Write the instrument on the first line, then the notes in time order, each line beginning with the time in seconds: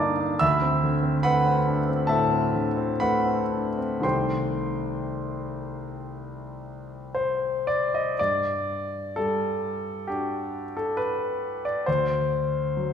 grand piano
Already playing: G2 D3 A#3 D4 D5 A5 D6
0.00 D#4
0.21 D4
0.39 D2 E5 B5 E6
0.62 C4
0.83 D3
1.03 C4
1.23 A3 B4 F#5 B5
1.46 C4
1.67 D4
1.89 C4
2.07 A2 A4 E5 A5
2.31 C4
2.54 D3
2.77 C4
3.00 A3 B4 F#5 B5
3.26 C4
3.52 D4
3.78 C4
4.00 C2 D#3 A3 C4 G4 C6
4.05 C5 G5
7.15 C5
7.67 D5
7.95 D#5
8.19 G2 D5
9.16 G3 A4
10.07 D4 F#4 G4
10.77 A4
10.97 B4
11.65 D5
11.86 D2 C5
12.77 F#3